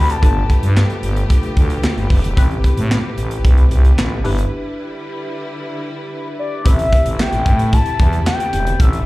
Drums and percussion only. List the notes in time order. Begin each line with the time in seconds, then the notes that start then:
0.10 closed hi-hat
0.23 kick, closed hi-hat, muted conga
0.50 kick, closed hi-hat, muted conga
0.63 closed hi-hat
0.77 snare, clap, high conga
0.90 closed hi-hat
1.03 closed hi-hat
1.16 closed hi-hat
1.30 kick, closed hi-hat
1.43 closed hi-hat
1.57 kick, closed hi-hat
1.70 closed hi-hat
1.83 snare, clap, high conga
1.98 closed hi-hat
2.10 kick, open hi-hat, high conga
2.24 closed hi-hat
2.37 kick, closed hi-hat, muted conga
2.51 closed hi-hat
2.64 kick, closed hi-hat, muted conga
2.77 closed hi-hat
2.91 snare, clap, high conga
3.18 closed hi-hat
3.31 closed hi-hat
3.45 kick, closed hi-hat, low conga
3.58 closed hi-hat
3.71 closed hi-hat, low conga
3.85 closed hi-hat
3.98 snare, clap, high conga
4.25 open hi-hat, high conga
4.38 closed hi-hat
6.66 kick, closed hi-hat, muted conga
6.79 closed hi-hat
6.93 kick, closed hi-hat, muted conga
7.06 closed hi-hat
7.20 snare, clap, high conga
7.32 closed hi-hat
7.46 kick, closed hi-hat
7.59 closed hi-hat
7.73 kick, closed hi-hat, low conga
7.86 closed hi-hat
7.99 kick, closed hi-hat, muted conga, low conga
8.13 closed hi-hat
8.26 snare, clap, high conga
8.40 closed hi-hat
8.53 closed hi-hat, high conga
8.67 closed hi-hat, high conga
8.80 kick, closed hi-hat, muted conga
8.93 closed hi-hat